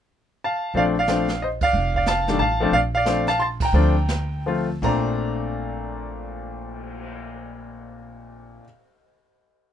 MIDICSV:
0, 0, Header, 1, 5, 480
1, 0, Start_track
1, 0, Key_signature, -2, "major"
1, 0, Tempo, 329308
1, 1090, Time_signature, 3, 2, 24, 8
1, 4452, Tempo, 343249
1, 5892, Tempo, 371517
1, 6852, Tempo, 386598
1, 12938, End_track
2, 0, Start_track
2, 0, Title_t, "Grand piano"
2, 0, Program_c, 0, 0
2, 647, Note_on_c, 0, 81, 76
2, 658, Note_on_c, 0, 77, 62
2, 1082, Note_off_c, 0, 77, 0
2, 1089, Note_on_c, 0, 53, 65
2, 1106, Note_on_c, 0, 57, 54
2, 1112, Note_on_c, 0, 60, 53
2, 1118, Note_on_c, 0, 62, 72
2, 1122, Note_off_c, 0, 81, 0
2, 1125, Note_on_c, 0, 77, 81
2, 1142, Note_on_c, 0, 74, 60
2, 1198, Note_off_c, 0, 77, 0
2, 1215, Note_off_c, 0, 74, 0
2, 1362, Note_off_c, 0, 53, 0
2, 1370, Note_off_c, 0, 57, 0
2, 1373, Note_off_c, 0, 60, 0
2, 1376, Note_off_c, 0, 62, 0
2, 1443, Note_on_c, 0, 77, 83
2, 1456, Note_on_c, 0, 74, 58
2, 1576, Note_on_c, 0, 53, 54
2, 1583, Note_on_c, 0, 57, 51
2, 1594, Note_on_c, 0, 60, 46
2, 1602, Note_on_c, 0, 62, 59
2, 1845, Note_off_c, 0, 53, 0
2, 1849, Note_off_c, 0, 57, 0
2, 1854, Note_off_c, 0, 60, 0
2, 1858, Note_off_c, 0, 62, 0
2, 2030, Note_off_c, 0, 77, 0
2, 2037, Note_off_c, 0, 74, 0
2, 2074, Note_on_c, 0, 75, 68
2, 2097, Note_on_c, 0, 72, 54
2, 2147, Note_off_c, 0, 75, 0
2, 2170, Note_off_c, 0, 72, 0
2, 2372, Note_on_c, 0, 77, 96
2, 2390, Note_on_c, 0, 74, 63
2, 2819, Note_off_c, 0, 74, 0
2, 2837, Note_off_c, 0, 77, 0
2, 2859, Note_on_c, 0, 77, 71
2, 2877, Note_on_c, 0, 74, 59
2, 3021, Note_off_c, 0, 74, 0
2, 3027, Note_off_c, 0, 77, 0
2, 3028, Note_on_c, 0, 81, 86
2, 3059, Note_on_c, 0, 77, 66
2, 3327, Note_on_c, 0, 51, 55
2, 3334, Note_on_c, 0, 55, 56
2, 3341, Note_on_c, 0, 57, 53
2, 3352, Note_on_c, 0, 62, 68
2, 3465, Note_off_c, 0, 81, 0
2, 3479, Note_off_c, 0, 51, 0
2, 3482, Note_off_c, 0, 55, 0
2, 3483, Note_off_c, 0, 77, 0
2, 3486, Note_off_c, 0, 57, 0
2, 3487, Note_on_c, 0, 81, 88
2, 3492, Note_off_c, 0, 62, 0
2, 3521, Note_on_c, 0, 77, 69
2, 3796, Note_on_c, 0, 53, 72
2, 3808, Note_on_c, 0, 57, 70
2, 3823, Note_on_c, 0, 60, 65
2, 3827, Note_on_c, 0, 62, 71
2, 3953, Note_off_c, 0, 53, 0
2, 3953, Note_off_c, 0, 77, 0
2, 3960, Note_off_c, 0, 57, 0
2, 3967, Note_off_c, 0, 60, 0
2, 3969, Note_off_c, 0, 62, 0
2, 3982, Note_off_c, 0, 81, 0
2, 3984, Note_on_c, 0, 77, 97
2, 4006, Note_on_c, 0, 74, 69
2, 4057, Note_off_c, 0, 77, 0
2, 4079, Note_off_c, 0, 74, 0
2, 4295, Note_on_c, 0, 77, 85
2, 4329, Note_on_c, 0, 74, 72
2, 4453, Note_on_c, 0, 53, 46
2, 4460, Note_on_c, 0, 57, 47
2, 4467, Note_on_c, 0, 60, 49
2, 4480, Note_on_c, 0, 62, 49
2, 4717, Note_off_c, 0, 53, 0
2, 4721, Note_off_c, 0, 57, 0
2, 4725, Note_off_c, 0, 60, 0
2, 4731, Note_off_c, 0, 62, 0
2, 4743, Note_off_c, 0, 74, 0
2, 4762, Note_off_c, 0, 77, 0
2, 4767, Note_on_c, 0, 81, 92
2, 4783, Note_on_c, 0, 77, 71
2, 4920, Note_off_c, 0, 81, 0
2, 4928, Note_off_c, 0, 77, 0
2, 4929, Note_on_c, 0, 84, 86
2, 4959, Note_on_c, 0, 81, 72
2, 4999, Note_off_c, 0, 84, 0
2, 5029, Note_off_c, 0, 81, 0
2, 5248, Note_on_c, 0, 82, 79
2, 5282, Note_on_c, 0, 79, 67
2, 5411, Note_on_c, 0, 53, 64
2, 5415, Note_on_c, 0, 57, 54
2, 5427, Note_on_c, 0, 62, 65
2, 5428, Note_on_c, 0, 60, 54
2, 5683, Note_off_c, 0, 53, 0
2, 5685, Note_off_c, 0, 57, 0
2, 5691, Note_off_c, 0, 60, 0
2, 5691, Note_off_c, 0, 62, 0
2, 6323, Note_off_c, 0, 82, 0
2, 6338, Note_off_c, 0, 79, 0
2, 6380, Note_on_c, 0, 53, 56
2, 6386, Note_on_c, 0, 57, 50
2, 6389, Note_on_c, 0, 60, 46
2, 6402, Note_on_c, 0, 65, 64
2, 6647, Note_off_c, 0, 53, 0
2, 6649, Note_off_c, 0, 57, 0
2, 6651, Note_off_c, 0, 60, 0
2, 6657, Note_off_c, 0, 65, 0
2, 6847, Note_on_c, 0, 46, 62
2, 6865, Note_on_c, 0, 57, 52
2, 6871, Note_on_c, 0, 60, 52
2, 6873, Note_on_c, 0, 82, 82
2, 6890, Note_on_c, 0, 62, 63
2, 11541, Note_off_c, 0, 82, 0
2, 11565, Note_off_c, 0, 46, 0
2, 11582, Note_off_c, 0, 57, 0
2, 11589, Note_off_c, 0, 60, 0
2, 11608, Note_off_c, 0, 62, 0
2, 12938, End_track
3, 0, Start_track
3, 0, Title_t, "Upright bass"
3, 0, Program_c, 1, 32
3, 1076, Note_on_c, 1, 34, 67
3, 2464, Note_off_c, 1, 34, 0
3, 2525, Note_on_c, 1, 29, 73
3, 3429, Note_off_c, 1, 29, 0
3, 3483, Note_on_c, 1, 33, 73
3, 3932, Note_off_c, 1, 33, 0
3, 3960, Note_on_c, 1, 34, 74
3, 5339, Note_off_c, 1, 34, 0
3, 5390, Note_on_c, 1, 38, 79
3, 6796, Note_off_c, 1, 38, 0
3, 6843, Note_on_c, 1, 34, 74
3, 11511, Note_off_c, 1, 34, 0
3, 12938, End_track
4, 0, Start_track
4, 0, Title_t, "Cymbal swell"
4, 7159, Note_on_c, 9, 59, 42
4, 9630, Note_off_c, 9, 59, 0
4, 12938, End_track
5, 0, Start_track
5, 0, Title_t, "Drums"
5, 1089, Note_on_c, 9, 25, 41
5, 1567, Note_on_c, 9, 44, 58
5, 1570, Note_on_c, 9, 38, 54
5, 1713, Note_off_c, 9, 44, 0
5, 1716, Note_off_c, 9, 38, 0
5, 1870, Note_on_c, 9, 38, 38
5, 2016, Note_off_c, 9, 38, 0
5, 2344, Note_on_c, 9, 51, 60
5, 2351, Note_on_c, 9, 36, 69
5, 2490, Note_off_c, 9, 51, 0
5, 2496, Note_off_c, 9, 36, 0
5, 2535, Note_off_c, 9, 25, 0
5, 2535, Note_on_c, 9, 25, 43
5, 2831, Note_on_c, 9, 36, 48
5, 2977, Note_off_c, 9, 36, 0
5, 3007, Note_on_c, 9, 44, 56
5, 3010, Note_on_c, 9, 38, 61
5, 3153, Note_off_c, 9, 44, 0
5, 3156, Note_off_c, 9, 38, 0
5, 3318, Note_on_c, 9, 38, 35
5, 3464, Note_off_c, 9, 38, 0
5, 3977, Note_off_c, 9, 25, 0
5, 3977, Note_on_c, 9, 25, 41
5, 4458, Note_on_c, 9, 44, 54
5, 4461, Note_on_c, 9, 38, 59
5, 4598, Note_off_c, 9, 44, 0
5, 4601, Note_off_c, 9, 38, 0
5, 4753, Note_on_c, 9, 38, 36
5, 4893, Note_off_c, 9, 38, 0
5, 5219, Note_on_c, 9, 36, 74
5, 5221, Note_on_c, 9, 51, 69
5, 5359, Note_off_c, 9, 36, 0
5, 5361, Note_off_c, 9, 51, 0
5, 5399, Note_off_c, 9, 25, 0
5, 5399, Note_on_c, 9, 25, 42
5, 5892, Note_on_c, 9, 44, 57
5, 5894, Note_on_c, 9, 38, 61
5, 6021, Note_off_c, 9, 44, 0
5, 6024, Note_off_c, 9, 38, 0
5, 6847, Note_on_c, 9, 36, 45
5, 6849, Note_on_c, 9, 49, 51
5, 6971, Note_off_c, 9, 36, 0
5, 6974, Note_off_c, 9, 49, 0
5, 7363, Note_off_c, 9, 25, 0
5, 12938, End_track
0, 0, End_of_file